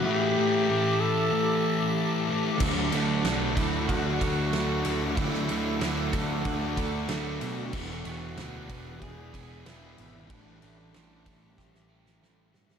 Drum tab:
CC |----------------|x---------------|----------------|x---------------|
RD |----------------|--x-x-x-x-x-x-x-|x-x-x-x-x-x-x-x-|--x-x-x-x-x-x-x-|
SD |----------------|----o-------o---|-o--o-------o---|-o--o-------o---|
BD |----------------|o-----o-o-o-----|o-----o-o-o-----|o-----o-o-o-----|

CC |----------------|
RD |x-x-x-x---------|
SD |----o---oo-oo-oo|
BD |o-----o-o-------|